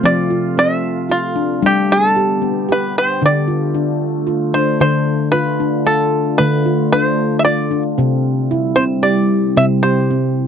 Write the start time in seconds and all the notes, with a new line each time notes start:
Already playing: C3 A3 F4
0.03 F3 C4 D5
0.30 F4
0.57 C4 E5
1.09 F4
1.36 D4
1.61 D3 G3 B3 D4 G4
1.66 G4
1.92 A4
2.16 G4
2.42 B3
2.69 G4 B4
2.98 C5
3.20 D3 A3 D4 F4
3.26 D5
3.48 F4
3.74 D4
4.27 F4
4.54 D4 C5
4.79 D3 A3 D4 F4 C5
5.32 F4 B4
5.60 D4
5.86 F4 A4
6.38 D3 A3 B4
6.66 F4
6.93 D4 C5
7.39 E5
7.45 F4 D5
7.71 D4
7.98 C3 G3 C4 E4
8.51 E4
8.76 C4 C5
9.03 G4 D5
9.57 C3 C4 E5
9.83 G4 C5
10.10 C4